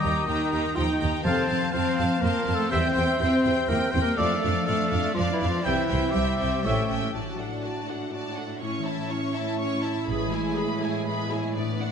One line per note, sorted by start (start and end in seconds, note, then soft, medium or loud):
0.00 1.28 D#3 medium
0.00 0.27 G3 medium
0.00 1.27 A#3 soft
0.00 0.11 D#4 soft
0.00 0.27 G4 soft
0.00 0.27 G4 medium
0.00 0.43 A#4 soft
0.00 0.59 D#5 soft
0.00 0.78 D#5 medium
0.00 0.26 G5 soft
0.00 0.28 A#5 soft
0.05 0.13 D#2 medium
0.05 0.27 D#4 medium
0.26 0.37 D#2 medium
0.26 0.75 D#3 medium
0.26 0.74 D#4 medium
0.26 0.51 D#4 soft
0.26 0.91 G4 soft
0.26 0.51 G5 medium
0.26 0.52 A#5 soft
0.44 0.75 A#4 soft
0.52 0.61 D#2 medium
0.52 0.75 D#4 soft
0.52 0.74 G5 soft
0.52 0.76 A#5 soft
0.61 1.28 D#5 soft
0.75 0.86 D#2 medium
0.75 0.84 F3 medium
0.75 1.00 D#4 soft
0.75 0.83 F4 medium
0.75 1.27 A#4 soft
0.75 0.98 G5 medium
0.75 1.23 G5 medium
0.75 1.00 A#5 medium
0.91 1.01 D#3 soft
0.91 1.00 D#4 medium
0.91 1.27 G4 soft
0.99 1.10 D#2 medium
0.99 1.25 D#4 soft
0.99 1.24 G5 soft
0.99 1.25 A#5 soft
1.09 1.27 D#4 soft
1.23 1.33 F2 medium
1.23 1.43 C3 medium
1.23 2.73 F3 medium
1.23 1.70 C4 medium
1.23 1.48 C4 medium
1.23 1.43 A4 medium
1.23 1.70 C5 medium
1.23 1.47 F5 medium
1.23 1.43 F5 medium
1.23 1.74 A5 medium
1.23 1.48 A5 medium
1.27 1.43 F3 medium
1.27 1.43 C4 medium
1.40 2.73 A3 soft
1.48 1.58 F2 medium
1.48 1.72 C4 medium
1.48 1.71 F5 soft
1.48 1.73 A5 soft
1.56 2.53 C4 soft
1.72 1.83 F2 medium
1.72 1.97 C4 medium
1.72 2.22 C4 medium
1.72 2.37 F4 soft
1.72 2.23 C5 medium
1.72 1.97 F5 medium
1.72 2.22 F5 medium
1.72 1.97 A5 medium
1.89 2.73 A5 soft
1.98 2.07 F2 medium
1.98 2.21 C4 medium
1.98 2.21 F5 medium
1.98 2.23 A5 soft
2.06 3.51 C5 medium
2.21 2.32 F2 medium
2.21 2.55 A#3 medium
2.21 2.46 C4 medium
2.21 2.56 A#4 medium
2.21 2.71 C5 medium
2.21 2.45 F5 medium
2.21 2.47 A5 medium
2.38 2.73 F4 soft
2.46 2.56 F2 medium
2.46 2.70 C4 medium
2.46 2.70 F5 medium
2.46 2.72 A5 medium
2.54 2.71 A3 medium
2.54 3.01 C4 soft
2.54 2.70 A4 medium
2.69 2.81 E2 medium
2.69 4.20 E3 medium
2.69 2.89 E3 medium
2.69 3.18 C4 medium
2.69 2.94 C4 medium
2.69 2.89 C4 medium
2.69 2.88 G4 medium
2.69 3.19 C5 medium
2.69 2.88 E5 medium
2.69 3.88 E5 medium
2.69 2.93 G5 medium
2.69 2.96 G5 medium
2.74 2.90 G3 medium
2.87 4.01 G3 medium
2.94 3.05 E2 medium
2.94 3.18 C4 medium
2.94 3.17 G5 medium
2.94 3.20 G5 medium
3.19 3.29 E2 medium
3.19 3.68 C4 medium
3.19 3.43 C4 medium
3.19 3.67 G4 medium
3.19 3.70 C5 medium
3.19 3.42 G5 medium
3.19 3.43 G5 medium
3.44 3.54 E2 medium
3.44 3.68 C4 medium
3.44 3.67 G5 medium
3.44 3.69 G5 medium
3.52 4.20 C5 soft
3.68 3.78 E2 medium
3.68 3.77 A#3 medium
3.68 3.93 C4 medium
3.68 4.20 G4 medium
3.68 3.93 A#4 medium
3.68 3.91 G5 medium
3.68 3.93 G5 medium
3.86 4.20 C4 soft
3.91 4.03 E2 medium
3.91 3.97 C4 medium
3.91 4.18 C4 medium
3.91 4.01 C5 medium
3.91 4.17 G5 medium
3.91 4.18 G5 medium
4.02 4.20 G3 medium
4.02 4.18 A#3 medium
4.02 4.18 A#4 medium
4.17 4.27 F2 medium
4.17 5.67 F3 medium
4.17 4.36 F3 medium
4.17 4.36 A3 medium
4.17 4.67 A3 medium
4.17 4.40 D4 medium
4.17 4.36 D4 medium
4.17 4.36 F4 medium
4.17 4.66 A4 medium
4.17 4.35 D5 medium
4.17 4.41 D5 medium
4.17 4.68 D5 medium
4.17 4.42 F5 medium
4.36 5.68 A3 soft
4.41 4.52 F2 medium
4.41 4.65 D4 medium
4.41 4.65 D5 medium
4.45 4.68 F5 medium
4.52 5.48 D4 soft
4.66 4.77 F2 medium
4.66 5.16 A3 medium
4.66 4.90 D4 medium
4.66 5.31 F4 medium
4.66 5.14 A4 medium
4.66 4.89 D5 medium
4.66 5.16 F5 medium
4.66 4.92 F5 medium
4.90 5.01 F2 medium
4.90 5.15 D4 medium
4.90 5.14 D5 medium
4.90 5.16 F5 soft
4.99 5.67 D5 soft
5.14 5.26 F2 medium
5.14 5.32 F3 medium
5.14 5.39 D4 medium
5.14 5.22 F4 medium
5.14 5.38 D5 medium
5.14 5.67 D5 medium
5.14 5.40 F5 medium
5.32 5.40 E3 medium
5.32 5.47 E4 medium
5.32 5.67 F4 soft
5.39 5.51 F2 medium
5.39 5.65 D4 medium
5.39 5.64 D5 soft
5.39 5.65 F5 medium
5.47 5.65 F3 medium
5.47 5.67 D4 soft
5.47 5.64 F4 medium
5.63 6.67 C3 medium
5.63 6.14 E3 medium
5.63 5.83 G3 medium
5.63 5.87 C4 medium
5.63 5.83 C4 medium
5.63 6.13 E4 medium
5.63 5.87 E5 medium
5.63 6.67 E5 medium
5.63 5.88 G5 medium
5.63 5.82 G5 medium
5.67 5.75 C2 medium
5.67 5.84 C3 medium
5.67 5.83 G4 medium
5.81 7.17 G3 soft
5.88 6.00 C2 medium
5.88 6.13 C4 medium
5.88 6.12 E5 soft
5.88 6.13 G5 medium
5.97 6.30 C4 soft
6.11 6.65 G3 medium
6.11 6.37 C4 medium
6.11 6.63 G4 medium
6.11 6.98 G4 soft
6.11 6.38 E5 medium
6.11 6.38 G5 medium
6.17 6.25 C2 medium
6.31 6.67 C4 soft
6.38 6.50 C2 soft
6.38 6.64 C4 soft
6.38 6.62 E5 soft
6.38 6.64 G5 soft
6.48 6.67 C5 soft
6.63 7.14 A2 medium
6.63 6.83 E3 soft
6.63 7.15 A3 medium
6.63 6.83 A3 soft
6.63 6.88 C#4 soft
6.63 6.83 C#4 medium
6.63 6.83 G4 soft
6.63 7.14 A4 medium
6.63 6.90 C#5 medium
6.63 6.88 E5 soft
6.63 6.83 E5 medium
6.63 6.89 G5 soft
6.67 6.75 A1 medium
6.89 7.00 A1 soft
6.89 7.14 C#4 soft
6.89 7.14 E5 soft
6.89 7.15 G5 soft
6.98 7.17 C#4 soft
6.98 7.17 G4 soft
7.14 7.62 A1 soft
7.14 8.60 A2 soft
7.14 10.05 A2 soft
7.14 8.58 D4 soft
7.14 8.58 F#4 soft
7.14 7.38 F#4 soft
7.14 7.37 D5 soft
7.14 7.38 A5 soft
7.32 8.65 F#3 soft
7.39 7.64 D4 soft
7.39 7.64 A4 soft
7.39 7.64 F#5 soft
7.48 8.44 A3 soft
7.63 8.28 D4 soft
7.63 7.89 F#4 soft
7.63 7.89 D5 soft
7.63 7.89 A5 soft
7.80 8.12 F#4 soft
7.88 8.14 D4 soft
7.88 8.13 A4 soft
7.88 8.14 F#5 soft
7.97 9.42 A4 soft
8.11 8.64 F#4 soft
8.11 8.37 F#4 soft
8.11 8.35 D5 soft
8.11 8.36 A5 soft
8.30 8.64 D4 soft
8.36 8.62 D4 soft
8.36 8.62 A4 soft
8.36 8.62 F#5 soft
8.46 8.93 A3 soft
8.60 10.07 A2 soft
8.60 8.85 C#4 soft
8.60 10.06 C#4 soft
8.60 11.57 E4 soft
8.60 8.84 C#5 soft
8.60 8.85 C#6 soft
8.78 10.11 E3 soft
8.85 9.11 E4 soft
8.85 9.11 E5 soft
8.85 9.11 A5 soft
8.94 9.91 A3 soft
9.09 9.75 C#4 soft
9.09 9.36 C#4 soft
9.09 9.35 C#5 soft
9.09 9.36 C#6 soft
9.27 9.59 E4 soft
9.34 9.60 E4 soft
9.34 9.59 E5 soft
9.34 9.60 A5 soft
9.43 10.11 A4 soft
9.59 9.83 C#4 soft
9.59 10.73 E4 soft
9.59 9.83 C#5 soft
9.59 9.83 C#6 soft
9.76 10.11 C#4 soft
9.84 10.09 E4 soft
9.84 10.09 E5 soft
9.84 10.09 A5 soft
9.92 10.11 A3 soft
10.08 10.55 A1 medium
10.08 11.55 A2 medium
10.08 11.92 A2 medium
10.08 11.54 G#3 medium
10.08 10.31 G#4 medium
10.08 10.32 B4 soft
10.08 10.32 B5 soft
10.25 11.59 E3 soft
10.33 10.58 E4 soft
10.33 10.58 G#4 soft
10.33 10.58 G#5 soft
10.41 11.38 G#3 soft
10.56 11.22 B3 soft
10.56 10.82 G#4 soft
10.56 10.82 B4 soft
10.56 10.83 B5 soft
10.74 11.05 E4 soft
10.80 11.06 E4 soft
10.80 11.07 G#4 soft
10.80 11.08 G#5 soft
10.90 11.59 G#4 soft
11.06 11.58 E4 soft
11.06 11.30 G#4 soft
11.06 11.30 B4 soft
11.06 11.30 B5 soft
11.23 11.92 B3 soft
11.31 11.56 E4 soft
11.31 11.57 G#4 soft
11.31 11.57 G#5 soft
11.39 11.59 G#3 soft
11.56 11.92 A2 soft
11.56 11.80 B3 soft
11.56 11.92 B3 soft
11.56 11.92 D4 soft
11.56 11.80 B4 soft
11.56 11.80 D5 soft
11.73 11.92 A3 soft
11.81 11.92 D4 soft
11.81 11.92 D5 soft
11.81 11.92 F#5 soft